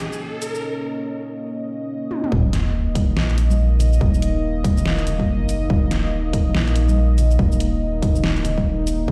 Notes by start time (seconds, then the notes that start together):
Already playing: A#3 C#4 D#5, riser
0.13 shaker
0.42 closed hi-hat, shaker
0.55 shaker
2.11 high tom
2.24 mid tom
2.32 D#1 A#3 D#4 D#5, kick, sub drop, high conga
2.53 snare, closed hi-hat
2.95 kick, closed hi-hat, high conga
3.16 A#1, snare
3.30 closed hi-hat
3.38 closed hi-hat
3.50 high conga, shaker
3.79 closed hi-hat, low conga, shaker
3.93 shaker
4.01 D#1, kick, high conga
4.14 shaker
4.22 closed hi-hat
4.64 kick, closed hi-hat, high conga
4.77 low conga, shaker
4.86 snare
4.99 closed hi-hat
5.06 closed hi-hat, low conga, shaker
5.19 kick, high conga
5.28 F#1
5.49 closed hi-hat, shaker
5.70 D#1, kick, high conga
5.91 snare, closed hi-hat
6.33 kick, closed hi-hat, high conga
6.55 A#1, snare
6.68 closed hi-hat
6.76 closed hi-hat
6.89 high conga, shaker
7.18 closed hi-hat, low conga, shaker
7.31 shaker
7.39 D#1, kick, high conga
7.52 shaker
7.60 closed hi-hat
8.02 kick, closed hi-hat, high conga
8.14 low conga, shaker
8.24 D1, snare
8.37 closed hi-hat
8.45 closed hi-hat, low conga, shaker
8.52 C#1
8.58 kick, high conga
8.66 D#1
8.87 closed hi-hat, shaker
9.08 D#1 F#4, kick, high conga